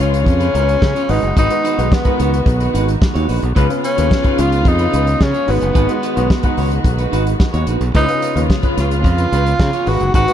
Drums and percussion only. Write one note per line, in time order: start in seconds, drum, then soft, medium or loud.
0.00 closed hi-hat medium
0.14 closed hi-hat soft
0.26 kick loud
0.26 closed hi-hat medium
0.40 closed hi-hat soft
0.55 closed hi-hat medium
0.69 closed hi-hat soft
0.82 kick loud
0.82 snare loud
0.96 closed hi-hat soft
1.09 open hi-hat medium
1.23 closed hi-hat soft
1.37 kick loud
1.37 closed hi-hat medium
1.50 closed hi-hat soft
1.65 closed hi-hat medium
1.79 closed hi-hat soft
1.92 kick loud
1.92 snare loud
2.05 kick medium
2.05 closed hi-hat soft
2.19 closed hi-hat medium
2.34 closed hi-hat soft
2.46 kick loud
2.46 closed hi-hat medium
2.60 closed hi-hat soft
2.75 closed hi-hat medium
2.88 closed hi-hat soft
3.02 kick loud
3.02 snare loud
3.15 closed hi-hat soft
3.29 open hi-hat medium
3.42 closed hi-hat soft
3.56 kick medium
3.56 closed hi-hat medium
3.70 closed hi-hat soft
3.84 closed hi-hat medium
3.98 closed hi-hat medium
4.11 kick loud
4.11 snare loud
4.24 kick medium
4.24 closed hi-hat soft
4.38 closed hi-hat medium
4.52 closed hi-hat soft
4.65 kick loud
4.65 closed hi-hat medium
4.79 closed hi-hat soft
4.93 closed hi-hat medium
5.07 closed hi-hat soft
5.21 kick loud
5.21 snare loud
5.34 closed hi-hat soft
5.48 open hi-hat medium
5.61 closed hi-hat soft
5.75 kick loud
5.75 closed hi-hat medium
5.89 closed hi-hat soft
6.03 closed hi-hat medium
6.17 closed hi-hat soft
6.30 kick medium
6.30 snare loud
6.43 kick medium
6.43 closed hi-hat soft
6.58 open hi-hat medium
6.71 closed hi-hat soft
6.84 kick loud
6.84 closed hi-hat medium
6.98 closed hi-hat soft
7.13 closed hi-hat medium
7.27 closed hi-hat soft
7.40 kick loud
7.40 snare loud
7.54 closed hi-hat soft
7.67 closed hi-hat medium
7.81 closed hi-hat soft
7.95 kick loud
7.95 closed hi-hat medium
8.08 closed hi-hat soft
8.22 closed hi-hat medium
8.36 closed hi-hat soft
8.50 kick loud
8.50 snare loud
8.63 kick medium
8.63 closed hi-hat soft
8.77 snare soft
8.77 closed hi-hat medium
8.91 closed hi-hat soft
9.04 kick loud
9.04 closed hi-hat medium
9.18 closed hi-hat soft
9.33 closed hi-hat medium
9.46 closed hi-hat soft
9.60 kick loud
9.60 snare loud
9.73 closed hi-hat soft
9.86 open hi-hat medium
10.00 closed hi-hat soft
10.14 kick loud
10.14 closed hi-hat medium
10.28 closed hi-hat soft